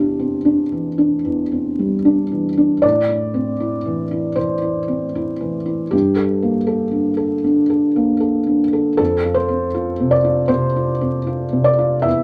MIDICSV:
0, 0, Header, 1, 2, 480
1, 0, Start_track
1, 0, Key_signature, -1, "major"
1, 0, Tempo, 794702
1, 1237, Tempo, 777202
1, 1720, Time_signature, 4, 2, 24, 8
1, 3157, Tempo, 766284
1, 7590, End_track
2, 0, Start_track
2, 0, Title_t, "Felt piano"
2, 0, Program_c, 0, 0
2, 0, Control_c, 0, 64, 127
2, 0, Note_on_c, 0, 40, 40
2, 0, Note_on_c, 0, 62, 31
2, 0, Note_on_c, 0, 67, 51
2, 117, Note_on_c, 0, 60, 32
2, 210, Note_off_c, 0, 62, 0
2, 271, Note_on_c, 0, 62, 33
2, 373, Note_off_c, 0, 60, 0
2, 434, Note_on_c, 0, 52, 32
2, 530, Note_off_c, 0, 62, 0
2, 592, Note_on_c, 0, 62, 35
2, 691, Note_off_c, 0, 52, 0
2, 731, Note_off_c, 0, 40, 0
2, 753, Note_on_c, 0, 40, 38
2, 851, Note_off_c, 0, 62, 0
2, 916, Note_on_c, 0, 60, 27
2, 1081, Note_on_c, 0, 55, 30
2, 1173, Note_off_c, 0, 60, 0
2, 1238, Note_on_c, 0, 62, 38
2, 1337, Note_off_c, 0, 55, 0
2, 1403, Note_on_c, 0, 52, 29
2, 1472, Note_off_c, 0, 67, 0
2, 1496, Note_off_c, 0, 62, 0
2, 1562, Note_on_c, 0, 62, 36
2, 1658, Note_off_c, 0, 52, 0
2, 1694, Note_off_c, 0, 40, 0
2, 1713, Note_on_c, 0, 74, 78
2, 1718, Note_on_c, 0, 45, 46
2, 1721, Note_off_c, 0, 62, 0
2, 1731, Control_c, 0, 64, 0
2, 1819, Control_c, 0, 64, 127
2, 1880, Note_on_c, 0, 64, 34
2, 2035, Note_on_c, 0, 60, 38
2, 2136, Note_off_c, 0, 64, 0
2, 2196, Note_on_c, 0, 64, 39
2, 2292, Note_off_c, 0, 60, 0
2, 2353, Note_on_c, 0, 52, 34
2, 2452, Note_off_c, 0, 64, 0
2, 2510, Note_on_c, 0, 64, 38
2, 2610, Note_off_c, 0, 52, 0
2, 2651, Note_off_c, 0, 45, 0
2, 2662, Note_on_c, 0, 72, 59
2, 2667, Note_on_c, 0, 52, 36
2, 2673, Note_off_c, 0, 74, 0
2, 2769, Note_off_c, 0, 64, 0
2, 2823, Note_on_c, 0, 64, 33
2, 2927, Note_off_c, 0, 52, 0
2, 2985, Note_on_c, 0, 60, 33
2, 3086, Note_off_c, 0, 64, 0
2, 3155, Note_on_c, 0, 64, 38
2, 3249, Note_off_c, 0, 60, 0
2, 3313, Note_on_c, 0, 52, 37
2, 3415, Note_off_c, 0, 64, 0
2, 3470, Note_on_c, 0, 64, 37
2, 3573, Note_off_c, 0, 52, 0
2, 3627, Note_on_c, 0, 67, 62
2, 3632, Note_off_c, 0, 72, 0
2, 3634, Note_off_c, 0, 64, 0
2, 3638, Note_on_c, 0, 43, 44
2, 3651, Control_c, 0, 64, 0
2, 3766, Control_c, 0, 64, 127
2, 3786, Note_on_c, 0, 69, 41
2, 3951, Note_on_c, 0, 58, 37
2, 4045, Note_off_c, 0, 69, 0
2, 4103, Note_on_c, 0, 69, 41
2, 4209, Note_off_c, 0, 58, 0
2, 4256, Note_on_c, 0, 50, 35
2, 4366, Note_off_c, 0, 69, 0
2, 4417, Note_on_c, 0, 69, 41
2, 4524, Note_off_c, 0, 50, 0
2, 4572, Note_off_c, 0, 43, 0
2, 4587, Note_on_c, 0, 50, 38
2, 4685, Note_off_c, 0, 69, 0
2, 4748, Note_on_c, 0, 69, 38
2, 4851, Note_off_c, 0, 50, 0
2, 4912, Note_on_c, 0, 58, 39
2, 5011, Note_off_c, 0, 69, 0
2, 5065, Note_on_c, 0, 69, 39
2, 5173, Note_off_c, 0, 58, 0
2, 5230, Note_on_c, 0, 50, 36
2, 5315, Note_off_c, 0, 67, 0
2, 5329, Note_off_c, 0, 69, 0
2, 5395, Note_on_c, 0, 69, 39
2, 5491, Note_off_c, 0, 50, 0
2, 5538, Note_off_c, 0, 69, 0
2, 5547, Note_on_c, 0, 69, 78
2, 5558, Note_on_c, 0, 41, 49
2, 5571, Control_c, 0, 64, 0
2, 5660, Control_c, 0, 64, 127
2, 5710, Note_on_c, 0, 65, 44
2, 5780, Note_on_c, 0, 72, 75
2, 5793, Note_off_c, 0, 69, 0
2, 5867, Note_on_c, 0, 60, 41
2, 5970, Note_off_c, 0, 65, 0
2, 6030, Note_on_c, 0, 65, 45
2, 6128, Note_off_c, 0, 60, 0
2, 6191, Note_on_c, 0, 48, 39
2, 6259, Note_on_c, 0, 74, 73
2, 6266, Note_off_c, 0, 72, 0
2, 6288, Note_off_c, 0, 65, 0
2, 6343, Note_on_c, 0, 65, 46
2, 6447, Note_off_c, 0, 48, 0
2, 6488, Note_off_c, 0, 41, 0
2, 6492, Note_on_c, 0, 72, 77
2, 6496, Note_on_c, 0, 48, 47
2, 6505, Note_off_c, 0, 74, 0
2, 6603, Note_off_c, 0, 65, 0
2, 6668, Note_on_c, 0, 65, 35
2, 6760, Note_off_c, 0, 48, 0
2, 6824, Note_on_c, 0, 60, 41
2, 6927, Note_off_c, 0, 65, 0
2, 6984, Note_on_c, 0, 65, 41
2, 7087, Note_off_c, 0, 60, 0
2, 7146, Note_on_c, 0, 48, 36
2, 7220, Note_on_c, 0, 74, 77
2, 7225, Note_off_c, 0, 72, 0
2, 7247, Note_off_c, 0, 65, 0
2, 7308, Note_on_c, 0, 65, 47
2, 7408, Note_off_c, 0, 48, 0
2, 7457, Note_on_c, 0, 76, 77
2, 7466, Note_on_c, 0, 40, 50
2, 7469, Note_off_c, 0, 74, 0
2, 7473, Note_off_c, 0, 65, 0
2, 7489, Control_c, 0, 64, 0
2, 7590, Note_off_c, 0, 40, 0
2, 7590, Note_off_c, 0, 76, 0
2, 7590, End_track
0, 0, End_of_file